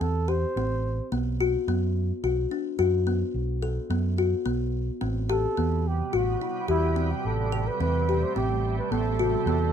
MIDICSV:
0, 0, Header, 1, 5, 480
1, 0, Start_track
1, 0, Tempo, 556586
1, 964, Time_signature, 7, 2, 24, 8
1, 8388, End_track
2, 0, Start_track
2, 0, Title_t, "Flugelhorn"
2, 0, Program_c, 0, 56
2, 7, Note_on_c, 0, 69, 78
2, 248, Note_on_c, 0, 72, 80
2, 261, Note_off_c, 0, 69, 0
2, 967, Note_off_c, 0, 72, 0
2, 4582, Note_on_c, 0, 69, 85
2, 5069, Note_on_c, 0, 67, 72
2, 5082, Note_off_c, 0, 69, 0
2, 5308, Note_on_c, 0, 66, 72
2, 5321, Note_off_c, 0, 67, 0
2, 5772, Note_off_c, 0, 66, 0
2, 5777, Note_on_c, 0, 64, 83
2, 6130, Note_on_c, 0, 67, 72
2, 6143, Note_off_c, 0, 64, 0
2, 6264, Note_on_c, 0, 69, 83
2, 6276, Note_off_c, 0, 67, 0
2, 6617, Note_on_c, 0, 71, 80
2, 6630, Note_off_c, 0, 69, 0
2, 6731, Note_off_c, 0, 71, 0
2, 6740, Note_on_c, 0, 71, 84
2, 7099, Note_on_c, 0, 72, 77
2, 7111, Note_off_c, 0, 71, 0
2, 7207, Note_off_c, 0, 72, 0
2, 7213, Note_on_c, 0, 67, 76
2, 7544, Note_off_c, 0, 67, 0
2, 7576, Note_on_c, 0, 71, 73
2, 7687, Note_on_c, 0, 69, 93
2, 7700, Note_off_c, 0, 71, 0
2, 8388, Note_off_c, 0, 69, 0
2, 8388, End_track
3, 0, Start_track
3, 0, Title_t, "Kalimba"
3, 0, Program_c, 1, 108
3, 10, Note_on_c, 1, 60, 63
3, 163, Note_off_c, 1, 60, 0
3, 243, Note_on_c, 1, 67, 59
3, 398, Note_off_c, 1, 67, 0
3, 493, Note_on_c, 1, 60, 68
3, 800, Note_off_c, 1, 60, 0
3, 966, Note_on_c, 1, 59, 71
3, 1120, Note_off_c, 1, 59, 0
3, 1211, Note_on_c, 1, 66, 73
3, 1364, Note_off_c, 1, 66, 0
3, 1451, Note_on_c, 1, 59, 66
3, 1758, Note_off_c, 1, 59, 0
3, 1930, Note_on_c, 1, 66, 64
3, 2083, Note_off_c, 1, 66, 0
3, 2168, Note_on_c, 1, 62, 58
3, 2321, Note_off_c, 1, 62, 0
3, 2404, Note_on_c, 1, 66, 73
3, 2559, Note_off_c, 1, 66, 0
3, 2645, Note_on_c, 1, 59, 64
3, 2954, Note_off_c, 1, 59, 0
3, 3126, Note_on_c, 1, 69, 66
3, 3280, Note_off_c, 1, 69, 0
3, 3368, Note_on_c, 1, 59, 72
3, 3522, Note_off_c, 1, 59, 0
3, 3608, Note_on_c, 1, 66, 64
3, 3761, Note_off_c, 1, 66, 0
3, 3843, Note_on_c, 1, 59, 67
3, 4152, Note_off_c, 1, 59, 0
3, 4322, Note_on_c, 1, 60, 69
3, 4477, Note_off_c, 1, 60, 0
3, 4566, Note_on_c, 1, 67, 74
3, 4720, Note_off_c, 1, 67, 0
3, 4807, Note_on_c, 1, 59, 70
3, 5115, Note_off_c, 1, 59, 0
3, 5287, Note_on_c, 1, 66, 69
3, 5441, Note_off_c, 1, 66, 0
3, 5532, Note_on_c, 1, 64, 55
3, 5684, Note_off_c, 1, 64, 0
3, 5763, Note_on_c, 1, 67, 72
3, 5918, Note_off_c, 1, 67, 0
3, 6005, Note_on_c, 1, 60, 62
3, 6314, Note_off_c, 1, 60, 0
3, 6488, Note_on_c, 1, 69, 70
3, 6642, Note_off_c, 1, 69, 0
3, 6731, Note_on_c, 1, 60, 66
3, 6884, Note_off_c, 1, 60, 0
3, 6976, Note_on_c, 1, 67, 62
3, 7127, Note_off_c, 1, 67, 0
3, 7210, Note_on_c, 1, 60, 67
3, 7517, Note_off_c, 1, 60, 0
3, 7691, Note_on_c, 1, 59, 75
3, 7844, Note_off_c, 1, 59, 0
3, 7929, Note_on_c, 1, 66, 69
3, 8082, Note_off_c, 1, 66, 0
3, 8169, Note_on_c, 1, 59, 66
3, 8388, Note_off_c, 1, 59, 0
3, 8388, End_track
4, 0, Start_track
4, 0, Title_t, "Ambient pad"
4, 0, Program_c, 2, 92
4, 4322, Note_on_c, 2, 55, 82
4, 4325, Note_on_c, 2, 59, 69
4, 4327, Note_on_c, 2, 48, 76
4, 5989, Note_off_c, 2, 59, 0
4, 6013, Note_on_c, 2, 57, 65
4, 7650, Note_off_c, 2, 55, 0
4, 7672, Note_off_c, 2, 57, 0
4, 7692, Note_on_c, 2, 66, 75
4, 7695, Note_on_c, 2, 71, 66
4, 8388, Note_off_c, 2, 48, 0
4, 8388, Note_off_c, 2, 66, 0
4, 8388, Note_off_c, 2, 71, 0
4, 8388, End_track
5, 0, Start_track
5, 0, Title_t, "Fingered electric bass"
5, 0, Program_c, 3, 33
5, 6, Note_on_c, 3, 40, 72
5, 378, Note_off_c, 3, 40, 0
5, 484, Note_on_c, 3, 33, 69
5, 857, Note_off_c, 3, 33, 0
5, 966, Note_on_c, 3, 35, 83
5, 1338, Note_off_c, 3, 35, 0
5, 1445, Note_on_c, 3, 42, 76
5, 1818, Note_off_c, 3, 42, 0
5, 1927, Note_on_c, 3, 35, 75
5, 2113, Note_off_c, 3, 35, 0
5, 2405, Note_on_c, 3, 42, 78
5, 2778, Note_off_c, 3, 42, 0
5, 2883, Note_on_c, 3, 35, 77
5, 3257, Note_off_c, 3, 35, 0
5, 3361, Note_on_c, 3, 42, 73
5, 3736, Note_off_c, 3, 42, 0
5, 3845, Note_on_c, 3, 35, 74
5, 4218, Note_off_c, 3, 35, 0
5, 4327, Note_on_c, 3, 33, 81
5, 4699, Note_off_c, 3, 33, 0
5, 4810, Note_on_c, 3, 40, 83
5, 5181, Note_off_c, 3, 40, 0
5, 5291, Note_on_c, 3, 33, 79
5, 5475, Note_off_c, 3, 33, 0
5, 5765, Note_on_c, 3, 40, 76
5, 6138, Note_off_c, 3, 40, 0
5, 6251, Note_on_c, 3, 33, 73
5, 6622, Note_off_c, 3, 33, 0
5, 6727, Note_on_c, 3, 40, 78
5, 7099, Note_off_c, 3, 40, 0
5, 7208, Note_on_c, 3, 33, 80
5, 7580, Note_off_c, 3, 33, 0
5, 7685, Note_on_c, 3, 33, 81
5, 8058, Note_off_c, 3, 33, 0
5, 8158, Note_on_c, 3, 40, 85
5, 8388, Note_off_c, 3, 40, 0
5, 8388, End_track
0, 0, End_of_file